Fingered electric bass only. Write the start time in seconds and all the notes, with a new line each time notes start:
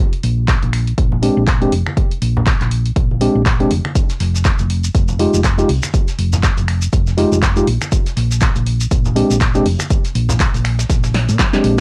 0.24 A#1
0.63 A#1
0.98 A#1
1.37 A#1
1.72 F1
2.22 A#1
2.61 A#1
2.96 A#1
3.35 A#1
3.71 F1
4.20 F1
4.59 F1
4.95 F1
5.34 F1
5.69 C2
6.18 F1
6.58 F1
6.93 F1
7.32 F1
7.67 A#1
8.17 A#1
8.56 A#1
8.91 A#1
9.30 A#1
9.66 F1
10.15 A#1
10.54 A#1
10.90 A#1
11.29 A#2
11.64 A#1